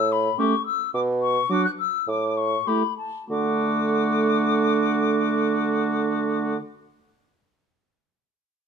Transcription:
Already playing: bassoon A2, flute E6
0.12 flute B5
0.38 french horn A3, clarinet C#4, oboe G4, flute C#6
0.66 flute E6
0.94 bassoon B2, flute D6
1.22 flute C#6
1.50 french horn F#3, clarinet D4, oboe F#4, flute D6
1.65 flute F#6
1.79 flute E6
2.07 bassoon A2, flute D6
2.37 flute C#6
2.67 french horn A3, clarinet E4, oboe G4, flute B5
2.98 flute A5
3.30 bassoon D3, french horn A3, clarinet D4, oboe F#4, flute D6

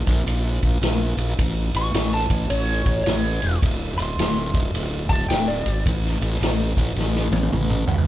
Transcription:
0.06 fingered electric bass A#1, kick, ride
0.26 fingered electric bass A#1, ride
0.63 fingered electric bass A#1, kick, ride
0.81 fingered electric bass A#1, snare, ride
1.17 fingered electric bass A#1, ride
1.38 fingered electric bass A1, kick, ride
1.74 fingered electric bass A1, lead electric guitar C#6, ride
1.94 fingered electric bass A1, snare, ride
2.14 lead electric guitar A5
2.30 fingered electric bass A1, kick, ride
2.50 fingered electric bass A1, lead electric guitar C#5, ride
2.86 fingered electric bass A1, lead electric guitar C#5, kick, ride
3.04 fingered electric bass A1, lead electric guitar C#5, snare, ride
3.42 fingered electric bass E1, ride
3.62 fingered electric bass D1, kick, ride
3.98 fingered electric bass D1, lead electric guitar C6, ride
4.18 fingered electric bass D1, snare, ride
4.53 fingered electric bass D1, kick, ride
4.74 fingered electric bass D1, ride
5.09 fingered electric bass D1, lead electric guitar A5, kick, ride
5.29 fingered electric bass D1, lead electric guitar G5, snare, ride
5.48 lead electric guitar D5
5.65 fingered electric bass G#1, ride
5.86 fingered electric bass A1, kick, ride
6.05 snare
6.21 fingered electric bass A1, ride
6.34 snare
6.41 fingered electric bass A1, snare, ride
6.77 fingered electric bass A1, kick, ride
6.96 fingered electric bass A1, snare
7.16 snare
7.32 fingered electric bass A1, high tom
7.43 high tom
7.52 fingered electric bass A1, mid tom
7.70 mid tom
7.87 fingered electric bass C#2, floor tom
7.98 floor tom

